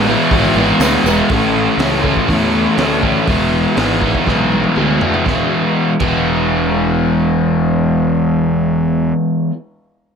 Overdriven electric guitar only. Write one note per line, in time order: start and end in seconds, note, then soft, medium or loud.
0.07 0.31 E3 loud
0.07 0.31 G#3 loud
0.07 0.32 B3 loud
0.07 0.33 E4 loud
0.32 0.55 E3 medium
0.32 0.56 G#3 loud
0.32 0.57 B3 loud
0.32 0.58 E4 loud
0.56 0.80 E3 medium
0.56 0.81 G#3 medium
0.56 0.82 B3 loud
0.56 0.82 E4 loud
0.81 1.04 E3 medium
0.81 1.06 G#3 medium
0.81 1.06 B3 medium
0.81 1.07 E4 medium
1.06 1.29 E3 medium
1.06 1.29 G#3 medium
1.06 1.29 B3 medium
1.06 1.30 E4 loud
1.30 1.78 A2 loud
1.30 1.80 E3 medium
1.30 1.79 A3 loud
1.30 1.80 C#4 loud
1.30 1.81 E4 loud
1.79 2.01 A2 medium
1.79 2.03 E3 medium
1.79 2.03 A3 medium
1.79 2.03 C#4 medium
1.79 2.05 E4 loud
2.03 2.26 A2 medium
2.03 2.28 E3 medium
2.03 2.28 A3 medium
2.03 2.28 C#4 medium
2.03 2.30 E4 loud
2.27 2.75 A2 loud
2.27 2.77 E3 loud
2.27 2.77 A3 loud
2.27 2.78 C#4 loud
2.27 2.79 E4 loud
2.77 3.01 A2 medium
2.77 3.03 E3 medium
2.77 3.03 A3 medium
2.77 3.03 C#4 medium
2.77 3.04 E4 medium
3.02 3.26 A2 medium
3.02 3.26 E3 medium
3.02 3.27 A3 loud
3.02 3.27 C#4 medium
3.02 3.29 E4 loud
3.27 3.75 E3 loud
3.27 3.76 G#3 loud
3.27 3.76 B3 loud
3.27 3.77 E4 loud
3.76 3.99 E3 medium
3.76 4.00 G#3 medium
3.76 4.01 B3 loud
3.76 4.01 E4 medium
4.00 4.24 E3 medium
4.00 4.25 G#3 medium
4.00 4.26 B3 loud
4.00 4.26 E4 loud
4.25 4.75 E3 medium
4.25 4.76 G#3 loud
4.25 4.76 B3 loud
4.25 4.77 E4 loud
4.76 5.00 E3 medium
4.76 5.01 G#3 medium
4.76 5.01 B3 medium
4.76 5.02 E4 medium
5.01 5.25 E3 medium
5.01 5.25 G#3 medium
5.01 5.25 B3 medium
5.01 5.26 E4 medium
5.26 5.93 E3 loud
5.26 5.93 G#3 loud
5.26 5.93 B3 medium
5.26 5.93 E4 loud
6.00 9.50 E3 loud
6.00 9.51 G#3 medium
6.00 9.52 B3 loud
6.00 9.53 E4 loud